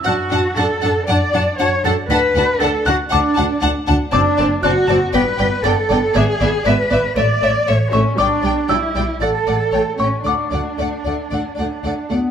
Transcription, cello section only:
\new Staff \with { instrumentName = "Cello section" } { \time 4/4 \key d \major \tempo 4 = 118 fis'4 a'4 d''4 cis''8 a'8 | b'4 a'8 fis'8 d'4 r4 | d'4 fis'4 b'4 a'4 | gis'4 b'4 d''4 cis''8 cis'8 |
d'4 e'4 a'4. cis'8 | d'2.~ d'8 r8 | }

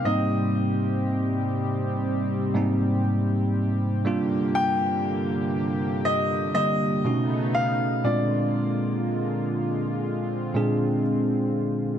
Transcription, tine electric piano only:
\new Staff \with { instrumentName = "Tine electric piano" } { \time 4/4 \key ees \major \tempo 4 = 60 <aes, g bes c' ees'>4. r4 <aes, g bes c' ees'>4 r8 | <g bes d' f'>4. r4 <d g bes g'>8 <b, a cis' dis' fis'>4 | <bes, aes c' d' f'>4. r4 <bes, aes c' d' aes'>4 r8 | }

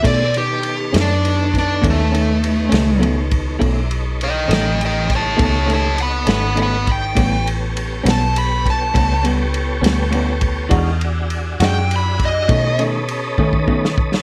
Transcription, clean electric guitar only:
\new Staff \with { instrumentName = "Clean electric guitar" } { \time 12/8 \key b \dorian \tempo 4. = 68 <b, dis a cis'>8 r4 <dis a cis'>8 r4 <b, dis a cis'>8 <dis a cis'>8 r8 <dis a cis'>8 <b, dis a cis'>8 r8 | <b, dis a cis'>8 r4 <dis a cis'>8 r4 <b, dis a cis'>8 <dis a cis'>8 r8 <dis a cis'>8 <b, dis a cis'>8 r8 | <a, g b cis'>8 r4 <g b cis'>8 r4 <a, g b cis'>8 <g b cis'>8 r8 <g b cis'>8 <a, g b cis'>8 r8 | <e gis d' fis'>8 r4 <gis d' fis'>8 r4 <b, dis a cis'>8 <dis a cis'>8 r8 <dis a cis'>8 <b, dis a cis'>8 r8 | }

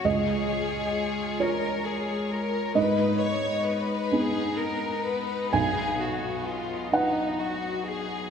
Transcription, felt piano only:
\new Staff \with { instrumentName = "Felt piano" } { \time 6/8 \key gis \dorian \tempo 4. = 44 << { dis''4. r4. | dis''2. | gis''4. fis''4. | } \\ { cis,4. <eis' cis''>4. | gis,4. <b dis'>4. | b,,4. <dis' b'>4. | } >> }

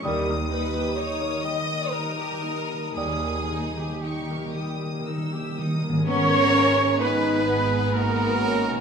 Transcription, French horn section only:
\new Staff \with { instrumentName = "French horn section" } { \time 3/4 \key gis \minor \tempo 4 = 63 <g dis'>2 <g dis'>4~ | <g dis'>4 <g dis'>4. r8 | b8 cis'8 dis'8 b4. | }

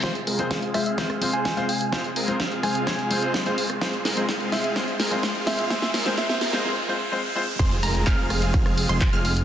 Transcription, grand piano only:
\new Staff \with { instrumentName = "Grand piano" } { \time 4/4 \key f \minor \tempo 4 = 127 <aes c' f' c''>16 r8 <aes c' f' c''>16 r8 <aes c' f' c''>16 r16 <aes c' f' c''>16 r16 <aes c' f' c''>8. <aes c' f' c''>16 r8 | <aes c' f' c''>16 r8 <aes c' f' c''>16 r8 <aes c' f' c''>16 r16 <aes c' f' c''>16 r16 <aes c' f' c''>8. <aes c' f' c''>16 r8 | <aes c' f' c''>16 r8 <aes c' f' c''>16 r8 <aes c' f' c''>16 r16 <aes c' f' c''>16 r8 <aes c' f' c''>16 r8 <aes c' f' c''>16 r16 | <aes c' f' c''>16 r8 <aes c' f' c''>16 <aes c' f' c''>16 r8 <aes c' f' c''>16 <aes c' f' c''>16 r16 <aes c' f' c''>16 r16 <aes c' f' c''>16 r16 <aes c' f' c''>16 r16 |
r1 | }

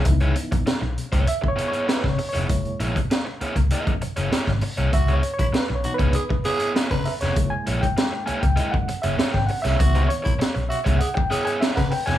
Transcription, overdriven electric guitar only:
\new Staff \with { instrumentName = "Overdriven electric guitar" } { \time 4/4 \key cis \dorian \tempo 4 = 98 r16 <b e' gis' cis''>16 r4 r16 <b e' gis' cis''>16 r8 <b e' gis' cis''>16 <b e' gis' cis''>16 <b e' gis' cis''>16 r8 <b e' gis' cis''>16 | r8 <ais e' gis' cis''>16 r8. <ais e' gis' cis''>16 r16 <ais e' gis' dis''>16 r8 <ais e' gis' cis''>16 <ais e' gis' cis''>16 r8 <ais e' gis' cis''>16 | r16 <b e' gis' cis''>16 r4 r16 <b e' gis' cis''>16 r8 <b e' gis' cis''>16 <b e' gis' cis''>16 <b e' gis' cis''>16 r8 <b e' gis' cis''>16 | r8 <ais e' gis' cis''>16 r8. <ais e' gis' cis''>16 r16 <ais e' gis' dis''>16 r8 <ais e' gis' cis''>16 <ais e' gis' cis''>16 r8 <ais e' gis' cis''>16 |
r16 <b e' gis' cis''>16 r4 r16 <b e' gis' cis''>16 r8 <b e' gis' cis''>16 <b e' gis' cis''>16 <b e' gis'>16 r8 <b e' gis' cis''>16 | }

